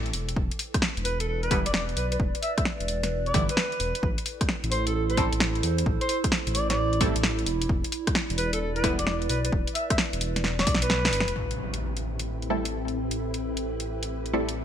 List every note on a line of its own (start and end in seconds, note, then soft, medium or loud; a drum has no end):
0.00 0.12 A1 loud
0.00 4.02 E4 medium
0.00 1.71 A4 medium
0.00 0.14 C5 medium
0.00 4.03 G5 medium
0.06 closed hi-hat soft
0.13 0.34 E1 medium
0.13 open hi-hat loud
0.29 4.03 B4 medium
0.29 closed hi-hat medium
0.36 0.50 E1 loud
0.36 kick loud
0.51 closed hi-hat soft
0.59 open hi-hat loud
0.74 kick loud
0.74 cross-stick medium
0.74 closed hi-hat medium
0.82 snare loud
0.89 5.36 D5 medium
0.97 1.63 E1 loud
0.97 closed hi-hat soft
1.05 1.17 B4 medium
1.05 open hi-hat loud
1.20 1.25 A4 medium
1.20 closed hi-hat medium
1.28 1.38 A4 medium
1.43 1.60 B4 medium
1.43 closed hi-hat soft
1.51 1.66 D3 medium
1.51 1.66 E3 medium
1.51 1.66 G3 medium
1.51 1.66 B3 medium
1.51 1.66 E4 medium
1.51 kick loud
1.51 cross-stick medium
1.51 open hi-hat loud
1.66 1.95 E1 loud
1.66 1.71 D5 medium
1.66 closed hi-hat medium
1.74 1.84 D5 medium
1.74 snare loud
1.89 closed hi-hat soft
1.97 2.18 B1 medium
1.97 2.06 B4 medium
1.97 open hi-hat loud
2.12 2.17 B4 medium
2.12 closed hi-hat medium
2.20 2.33 E1 loud
2.20 kick loud
2.35 closed hi-hat soft
2.43 2.52 E5 medium
2.43 open hi-hat loud
2.58 2.63 E5 medium
2.58 kick loud
2.58 cross-stick medium
2.58 closed hi-hat medium
2.65 snare loud
2.80 3.11 E1 loud
2.80 closed hi-hat soft
2.88 open hi-hat loud
3.03 snare medium
3.03 closed hi-hat medium
3.11 3.32 E1 medium
3.26 3.44 D5 medium
3.26 closed hi-hat soft
3.34 3.47 G1 loud
3.34 3.50 D3 loud
3.34 3.50 E3 medium
3.34 3.50 G3 medium
3.34 3.50 B3 medium
3.34 3.50 E4 loud
3.34 kick loud
3.34 cross-stick medium
3.34 open hi-hat loud
3.49 4.09 B4 medium
3.49 closed hi-hat medium
3.57 snare loud
3.72 closed hi-hat soft
3.80 3.93 E1 loud
3.80 open hi-hat medium
3.95 closed hi-hat medium
4.03 4.16 A1 loud
4.03 12.41 E4 medium
4.03 kick loud
4.11 8.15 A4 medium
4.18 closed hi-hat medium
4.26 open hi-hat loud
4.41 kick loud
4.41 cross-stick medium
4.41 closed hi-hat medium
4.49 snare loud
4.64 5.29 A1 loud
4.64 closed hi-hat medium
4.72 4.84 C5 medium
4.72 open hi-hat loud
4.87 4.92 A4 medium
4.87 closed hi-hat medium
4.93 5.04 A4 medium
4.93 7.47 C5 medium
5.10 5.27 C5 medium
5.10 closed hi-hat soft
5.17 5.33 G3 medium
5.17 5.33 A3 medium
5.17 5.33 C4 medium
5.17 5.33 E4 medium
5.17 5.33 A4 medium
5.17 kick loud
5.17 cross-stick medium
5.17 open hi-hat loud
5.33 5.62 A1 loud
5.33 closed hi-hat medium
5.40 snare loud
5.55 closed hi-hat soft
5.63 5.84 E2 medium
5.63 open hi-hat loud
5.78 closed hi-hat medium
5.86 5.99 A1 loud
5.86 kick loud
6.01 6.18 C5 medium
6.01 closed hi-hat medium
6.09 open hi-hat loud
6.24 kick loud
6.24 cross-stick medium
6.24 closed hi-hat medium
6.32 snare loud
6.47 7.13 A1 loud
6.47 closed hi-hat medium
6.55 6.67 D5 medium
6.55 open hi-hat loud
6.70 7.01 D5 medium
6.70 snare medium
6.70 closed hi-hat medium
6.93 closed hi-hat soft
7.01 7.16 G3 loud
7.01 7.16 A3 medium
7.01 7.16 C4 medium
7.01 7.16 E4 medium
7.01 7.16 A4 loud
7.01 kick loud
7.01 cross-stick medium
7.01 open hi-hat loud
7.16 7.45 A1 loud
7.16 closed hi-hat medium
7.23 snare loud
7.39 closed hi-hat soft
7.46 7.67 E1 medium
7.46 open hi-hat loud
7.62 closed hi-hat medium
7.69 7.82 E1 loud
7.69 12.26 D5 medium
7.69 kick loud
7.84 12.26 B4 medium
7.84 closed hi-hat medium
7.92 open hi-hat loud
8.07 kick loud
8.07 cross-stick medium
8.07 closed hi-hat medium
8.15 snare loud
8.30 8.96 E1 loud
8.30 closed hi-hat medium
8.38 8.50 B4 medium
8.38 open hi-hat loud
8.53 8.58 A4 medium
8.53 closed hi-hat medium
8.61 8.71 A4 medium
8.76 8.93 B4 medium
8.76 closed hi-hat soft
8.84 8.99 D3 medium
8.84 8.99 E3 medium
8.84 8.99 G3 medium
8.84 8.99 B3 medium
8.84 8.99 E4 medium
8.84 kick loud
8.84 cross-stick medium
8.84 open hi-hat loud
8.99 9.28 E1 loud
8.99 9.04 D5 medium
8.99 closed hi-hat medium
9.07 9.16 D5 medium
9.07 snare loud
9.22 closed hi-hat soft
9.29 9.50 B1 loud
9.29 9.39 B4 medium
9.29 open hi-hat loud
9.44 9.50 B4 medium
9.44 closed hi-hat medium
9.52 9.66 E1 loud
9.52 kick loud
9.67 closed hi-hat medium
9.75 9.85 E5 medium
9.75 open hi-hat loud
9.90 9.95 E5 medium
9.90 kick loud
9.90 cross-stick medium
9.90 closed hi-hat medium
9.98 snare loud
10.13 10.66 E1 loud
10.13 closed hi-hat medium
10.21 open hi-hat loud
10.36 snare medium
10.36 closed hi-hat medium
10.44 snare medium
10.59 10.76 D5 medium
10.59 snare medium
10.59 closed hi-hat soft
10.67 11.11 B1 loud
10.67 kick loud
10.67 open hi-hat loud
10.75 snare medium
10.82 11.36 B4 loud
10.82 closed hi-hat medium
10.90 snare medium
11.05 snare loud
11.05 closed hi-hat soft
11.13 11.26 G1 medium
11.13 open hi-hat loud
11.20 snare loud
11.28 11.35 E1 loud
11.28 closed hi-hat medium
11.36 14.64 A1 medium
11.36 14.64 C4 medium
11.36 14.64 E4 medium
11.36 14.64 G4 medium
11.36 14.64 B4 medium
11.36 impact medium
11.51 14.64 A4 medium
11.51 closed hi-hat soft
11.58 14.64 E5 medium
11.74 closed hi-hat medium
11.97 closed hi-hat soft
12.19 closed hi-hat medium
12.42 closed hi-hat soft
12.50 12.66 G3 medium
12.50 12.66 A3 medium
12.50 12.66 C4 medium
12.50 12.66 E4 medium
12.50 12.66 A4 medium
12.65 closed hi-hat medium
12.88 closed hi-hat soft
13.11 closed hi-hat medium
13.34 closed hi-hat soft
13.57 closed hi-hat medium
13.80 closed hi-hat soft
14.03 closed hi-hat medium
14.26 closed hi-hat soft
14.33 14.49 G3 medium
14.33 14.49 A3 medium
14.33 14.49 C4 medium
14.33 14.49 E4 medium
14.33 14.49 A4 loud
14.49 closed hi-hat medium